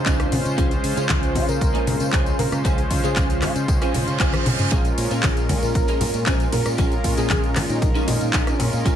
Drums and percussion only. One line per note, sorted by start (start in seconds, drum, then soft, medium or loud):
0.06 kick loud
0.06 clap loud
0.06 closed hi-hat medium
0.06 tambourine medium
0.20 cross-stick medium
0.20 closed hi-hat soft
0.20 tambourine soft
0.32 open hi-hat medium
0.32 low conga medium
0.46 closed hi-hat soft
0.46 tambourine medium
0.58 kick loud
0.58 closed hi-hat medium
0.58 tambourine medium
0.71 closed hi-hat soft
0.71 tambourine soft
0.84 open hi-hat loud
0.97 closed hi-hat soft
0.97 tambourine medium
1.09 kick loud
1.09 clap loud
1.09 closed hi-hat medium
1.09 tambourine medium
1.09 high conga medium
1.23 closed hi-hat soft
1.23 tambourine soft
1.35 kick medium
1.35 open hi-hat medium
1.35 high conga medium
1.49 closed hi-hat soft
1.49 tambourine medium
1.61 kick loud
1.61 closed hi-hat medium
1.61 tambourine medium
1.75 closed hi-hat soft
1.75 tambourine soft
1.87 open hi-hat loud
1.87 low conga medium
2.00 closed hi-hat soft
2.00 tambourine medium
2.13 kick loud
2.13 clap loud
2.13 closed hi-hat medium
2.26 closed hi-hat soft
2.26 tambourine soft
2.39 open hi-hat medium
2.39 low conga medium
2.52 cross-stick medium
2.52 closed hi-hat soft
2.52 tambourine medium
2.65 kick loud
2.65 closed hi-hat medium
2.65 tambourine medium
2.78 closed hi-hat soft
2.78 tambourine soft
2.91 kick medium
2.91 open hi-hat loud
2.91 high conga medium
3.04 closed hi-hat soft
3.04 tambourine medium
3.16 kick loud
3.16 clap loud
3.16 closed hi-hat medium
3.16 tambourine medium
3.16 high conga medium
3.30 closed hi-hat soft
3.30 tambourine soft
3.42 cross-stick medium
3.42 clap medium
3.42 open hi-hat medium
3.42 high conga medium
3.56 closed hi-hat soft
3.56 tambourine medium
3.68 kick loud
3.68 closed hi-hat medium
3.68 tambourine medium
3.82 cross-stick medium
3.82 closed hi-hat soft
3.82 tambourine soft
3.94 open hi-hat loud
3.94 low conga medium
4.08 closed hi-hat soft
4.08 tambourine medium
4.20 kick loud
4.20 clap loud
4.20 closed hi-hat medium
4.20 tambourine medium
4.33 cross-stick medium
4.33 closed hi-hat soft
4.33 high tom medium
4.33 tambourine soft
4.33 high conga medium
4.46 open hi-hat medium
4.46 mid tom medium
4.46 low conga loud
4.59 closed hi-hat soft
4.59 mid tom medium
4.59 tambourine medium
4.72 kick loud
4.72 closed hi-hat medium
4.72 tambourine medium
4.84 closed hi-hat soft
4.84 tambourine soft
4.98 open hi-hat loud
4.98 ride medium
5.11 closed hi-hat soft
5.11 tambourine medium
5.23 kick loud
5.23 clap loud
5.23 closed hi-hat medium
5.23 tambourine medium
5.23 high conga medium
5.37 closed hi-hat soft
5.37 tambourine soft
5.49 kick medium
5.49 open hi-hat medium
5.49 ride medium
5.49 high conga medium
5.63 closed hi-hat soft
5.63 tambourine medium
5.75 kick loud
5.75 closed hi-hat medium
5.75 tambourine medium
5.88 closed hi-hat soft
5.88 tambourine soft
6.01 open hi-hat loud
6.01 ride medium
6.01 low conga loud
6.14 closed hi-hat soft
6.14 tambourine medium
6.26 kick loud
6.26 clap loud
6.26 closed hi-hat medium
6.26 tambourine medium
6.40 closed hi-hat soft
6.40 tambourine soft
6.52 open hi-hat loud
6.52 ride medium
6.52 low conga loud
6.66 cross-stick medium
6.66 closed hi-hat soft
6.66 tambourine medium
6.78 kick loud
6.78 closed hi-hat medium
6.78 tambourine medium
6.92 closed hi-hat soft
6.92 tambourine soft
7.04 kick medium
7.04 open hi-hat loud
7.04 ride medium
7.17 closed hi-hat soft
7.17 tambourine medium
7.30 kick loud
7.30 clap loud
7.30 closed hi-hat medium
7.30 tambourine medium
7.30 high conga medium
7.44 closed hi-hat soft
7.44 tambourine soft
7.56 cross-stick medium
7.56 clap medium
7.56 open hi-hat loud
7.56 ride medium
7.56 high conga loud
7.69 closed hi-hat soft
7.69 tambourine medium
7.82 kick loud
7.82 closed hi-hat medium
7.82 tambourine medium
7.95 closed hi-hat soft
7.95 tambourine soft
8.08 open hi-hat loud
8.08 ride medium
8.08 low conga loud
8.21 closed hi-hat soft
8.21 tambourine medium
8.33 kick loud
8.33 clap loud
8.33 closed hi-hat medium
8.33 tambourine medium
8.47 cross-stick medium
8.47 closed hi-hat soft
8.47 tambourine soft
8.60 open hi-hat loud
8.60 ride medium
8.60 low conga loud
8.73 closed hi-hat soft
8.73 tambourine medium
8.85 kick loud
8.85 closed hi-hat medium
8.85 tambourine medium